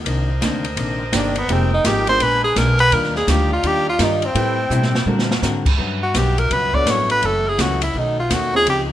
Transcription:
0.04 C2 C3 D3 D#3 A#3 D4 A#4 C5 D#5, kick, ride
0.41 D2 C3 D#3 A#3 D4, kick, snare, hi-hat pedal, ride
0.65 ride
0.77 A#1 C3 D#3 A#3 D4, kick, ride
1.12 G1 C3 D#3 A#3 C4 D4 G4, kick, snare, hi-hat pedal, ride
1.36 B3, ride
1.48 F1 F3 G#3 A#3 C4 D#4 G4 G#4 G5, kick, ride
1.74 D#4
1.84 G#1 F3 A#3 D#4 G4 G#4, kick, snare, hi-hat pedal, ride
2.07 G#3 B3 D4 F4 A#4 C5, ride
2.20 A#1 A#2 G#3 B3 D4 B4 G#5, kick, ride
2.44 G#4
2.55 B1 A#2 G#3 B3 D4 A#4, kick, snare, hi-hat pedal, ride
2.79 B4, ride
2.91 D#2 D#3 G3 D4 D#4 F4 G4 A#4 D5 F5, kick, ride
3.03 snare
3.16 G#4, snare
3.27 D2 D#3 G3 D4 F4 G4, kick, snare, hi-hat pedal, ride
3.53 F4
3.63 D#2 D#3 G3 D4 F4 G4, kick, ride
3.89 F4
3.98 G2 D#3 G3 D4 D#4 F4 A#4, kick, snare, hi-hat pedal, ride
4.03 D#4
4.22 C4, ride
4.34 A2 G3 A3 C4 E4 G4 A4 B4 C5 G5, kick, ride
4.70 A2 B2 G3 C4 E4, hi-hat pedal
4.83 snare
4.95 snare
5.06 A#2 D3 C4 D4 F#4 A#4 F#5, high tom
5.19 snare
5.31 snare
5.42 G#2 D3 C4 F#4 A#4, snare, hi-hat pedal
5.66 kick, crash
5.77 G2 B2 F#3 A3 B3 C#4 F#4, kick
6.03 F#4
6.14 B1 G2 F#3 B3 C#4 G4, kick, snare, hi-hat pedal, ride
6.38 A#4, ride
6.50 C#2 G2 F#3 B3 C#4 B4, kick, ride
6.74 B3 D4 F#4 A4 C#5 D5, kick
6.85 A1 G2 F#3 B3 C#4, kick, snare, hi-hat pedal, ride
6.90 C#5
7.10 B4, ride
7.22 F#1 F#2 E3 F#3 A3 C#4 E4, kick, ride
7.26 A4
7.48 G#4
7.58 C#2 F#2 E3 A3 C#4 F#4, kick, snare, hi-hat pedal, ride
7.82 E4, ride
7.94 B1 B2 D#3 A3 B3 C#4 D#4, kick
7.98 D#4
8.19 F4
8.29 D#2 B2 D#3 A3 C#4, kick, snare, hi-hat pedal, ride
8.34 F#4
8.53 C4 C#4 D#4 F4 G#4
8.66 C#2 C#3 F3 C4 D#4 G4, kick, ride

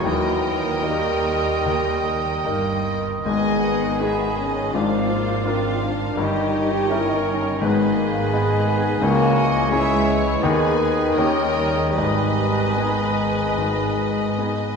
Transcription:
Already playing: E3
0.03 D#2 D#3 F#3 A#4 D#5 G5
0.07 D#2 A#4 D#5 G5
0.83 D#3 G3 A#3 D#4 A#4
1.66 D#2 D#3
2.45 G1 G2 A#3 D#4 A#4
3.24 G#1 G#2 B3 G#4 D#5 G#5
3.63 F#5
4.00 B3 D#4 G#4 B4 E5
4.36 C#4 D#5
4.73 G#1 G#2 F3 D4 F4 A#4 C5 D5 F5
4.93 C4
5.12 A#3
5.46 C4 D4 F4 A#4 F5
5.84 D4
6.17 G1 G2 D#3 D#4 G4 A#4 C#5 D#5 G5
6.73 G4
6.89 C#4 D#4 E4 A#4
7.09 D#4
7.23 C#4
7.61 G#1 G#2 B3 G#4 B4 D#5 G#5
7.94 A#3
8.30 G#3 B3 D#4 G#4
8.34 G#4
8.68 B3
9.00 C#2 C#3 E3 A#3 C#5
9.04 C#2 F#4
9.37 D#5
9.70 G#3 C#4 E4 G#4 C#5 E5
9.75 E4
10.07 C#5
10.42 D#2 D#3 B3 D#4 G#4 B4 D#5 G#5
10.80 G#4
11.15 D#2 D#3 C#4 D#4 G4 A#4 C#5 D#5 G5
11.55 G3
11.74 G#3
11.92 G#1 G#2 G3 D#5
11.96 G#1 G#2 B4 G#5
12.77 G#3 B3 D#4 G#4
13.57 G#1 G#2
14.38 B3 D#4 G#4

